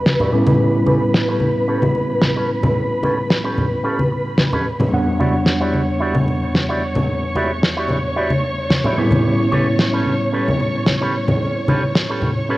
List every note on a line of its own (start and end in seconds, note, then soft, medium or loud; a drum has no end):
0.00 0.30 E2 medium
0.00 0.30 G3 medium
0.00 0.30 B3 medium
0.00 0.30 D4 medium
0.00 4.93 B4 medium
0.00 0.31 F#5 medium
0.00 4.93 B5 medium
0.06 snare loud
0.06 high conga medium
0.20 0.33 E4 medium
0.20 0.32 F#4 medium
0.20 0.31 G4 medium
0.20 0.33 D5 medium
0.20 low conga medium
0.32 4.62 A2 medium
0.32 4.62 G3 medium
0.32 4.62 B3 medium
0.32 0.76 C#4 medium
0.32 4.63 C#4 medium
0.32 4.63 E4 medium
0.32 0.77 G4 medium
0.32 0.77 A4 medium
0.32 0.77 B4 medium
0.46 muted conga medium
0.46 high conga medium
0.46 low conga medium
0.86 1.01 C#4 medium
0.86 1.01 G4 medium
0.86 1.01 A4 medium
0.86 1.02 B4 medium
0.86 high conga medium
1.14 muted clean electric guitar stroke soft
1.14 snare loud
1.28 1.48 C#4 medium
1.28 1.48 G4 medium
1.28 1.49 A4 medium
1.28 1.49 B4 medium
1.40 high conga medium
1.68 1.82 C#4 loud
1.68 1.83 G4 medium
1.68 1.83 A4 medium
1.68 1.83 B4 medium
1.82 high conga medium
1.82 low conga medium
1.95 muted clean electric guitar stroke soft
1.95 muted conga soft
2.22 snare loud
2.22 high conga medium
2.36 2.49 C#4 medium
2.36 2.49 G4 medium
2.36 2.49 A4 medium
2.36 2.50 B4 medium
2.63 muted clean electric guitar stroke soft
2.63 muted conga soft
2.63 high conga medium
2.63 low conga medium
3.03 3.17 C#4 loud
3.03 3.18 G4 medium
3.03 3.18 A4 medium
3.03 3.18 B4 medium
3.03 muted conga soft
3.03 high conga medium
3.30 muted clean electric guitar stroke soft
3.30 snare loud
3.44 3.64 C#4 medium
3.44 3.64 G4 medium
3.44 3.65 A4 medium
3.44 3.65 B4 medium
3.58 high conga medium
3.58 low conga medium
3.84 3.98 C#4 medium
3.84 3.99 G4 medium
3.84 3.99 A4 medium
3.84 3.99 B4 loud
3.99 high conga medium
4.11 muted clean electric guitar stroke soft
4.38 snare loud
4.38 high conga medium
4.52 4.65 C#4 medium
4.52 4.65 G4 medium
4.52 4.66 A4 medium
4.52 4.66 B4 medium
4.52 low conga medium
4.80 muted clean electric guitar stroke soft
4.80 muted conga medium
4.80 high conga medium
4.80 low conga medium
4.91 8.95 E2 medium
4.91 8.95 G3 medium
4.91 8.95 B3 medium
4.91 8.95 D4 medium
4.91 12.57 C#5 medium
4.91 8.96 F#5 medium
4.91 12.57 C#6 medium
5.19 5.34 E4 loud
5.19 5.34 F#4 medium
5.19 5.34 G4 medium
5.19 5.34 D5 loud
5.19 high conga medium
5.46 muted clean electric guitar stroke soft
5.46 snare medium
5.60 5.81 E4 medium
5.60 5.81 F#4 medium
5.60 5.81 G4 medium
5.60 5.81 D5 medium
5.74 high conga medium
6.00 6.15 E4 loud
6.00 6.15 F#4 medium
6.00 6.15 G4 medium
6.00 6.15 D5 loud
6.15 high conga medium
6.15 low conga medium
6.27 muted clean electric guitar stroke soft
6.27 muted conga soft
6.54 snare loud
6.54 high conga medium
6.69 6.82 E4 medium
6.69 6.82 F#4 medium
6.69 6.82 G4 medium
6.69 6.82 D5 medium
6.95 muted clean electric guitar stroke soft
6.95 muted conga medium
6.95 high conga medium
6.95 low conga medium
7.35 7.50 E4 medium
7.35 7.50 F#4 medium
7.35 7.50 G4 medium
7.35 7.50 D5 loud
7.35 muted conga medium
7.35 high conga medium
7.62 muted clean electric guitar stroke soft
7.62 snare loud
7.77 7.97 E4 medium
7.77 7.97 F#4 medium
7.77 7.97 G4 medium
7.77 7.97 D5 medium
7.89 high conga medium
7.89 low conga medium
8.16 8.31 E4 medium
8.16 8.31 F#4 medium
8.16 8.31 G4 medium
8.16 8.31 D5 loud
8.30 high conga medium
8.44 muted clean electric guitar stroke soft
8.70 snare medium
8.70 high conga medium
8.84 8.98 E4 medium
8.84 8.98 F#4 medium
8.84 8.97 G4 medium
8.84 8.98 D5 medium
8.84 low conga medium
8.97 12.57 A2 medium
8.97 12.57 G3 medium
8.97 12.57 B3 medium
8.97 9.42 C#4 medium
8.97 12.57 C#4 medium
8.97 12.57 E4 medium
8.97 9.42 G4 medium
8.97 9.42 A4 medium
8.97 9.42 B4 medium
9.11 muted conga medium
9.11 high conga medium
9.11 low conga medium
9.52 9.66 C#4 medium
9.52 9.66 G4 medium
9.52 9.67 A4 medium
9.52 9.67 B4 loud
9.52 high conga medium
9.79 muted clean electric guitar stroke soft
9.79 snare loud
9.93 10.13 C#4 medium
9.93 10.13 G4 medium
9.93 10.13 A4 medium
9.93 10.14 B4 medium
10.06 high conga soft
10.32 10.47 C#4 loud
10.32 10.47 G4 medium
10.32 10.47 A4 medium
10.32 10.48 B4 loud
10.48 high conga medium
10.48 low conga medium
10.60 muted clean electric guitar stroke soft
10.60 muted conga soft
10.86 snare loud
10.86 high conga medium
11.01 11.14 C#4 medium
11.01 11.14 G4 medium
11.01 11.14 A4 medium
11.01 11.14 B4 medium
11.28 muted clean electric guitar stroke soft
11.28 muted conga medium
11.28 high conga medium
11.28 low conga medium
11.68 11.82 C#4 loud
11.68 11.82 G4 medium
11.68 11.83 A4 medium
11.68 11.83 B4 loud
11.68 muted conga medium
11.68 high conga medium
11.95 muted clean electric guitar stroke soft
11.95 snare loud
12.09 12.29 C#4 medium
12.09 12.30 G4 medium
12.09 12.30 A4 medium
12.09 12.30 B4 medium
12.22 high conga medium
12.22 low conga medium
12.49 12.57 C#4 loud
12.49 12.57 G4 medium
12.49 12.57 A4 medium
12.49 12.57 B4 loud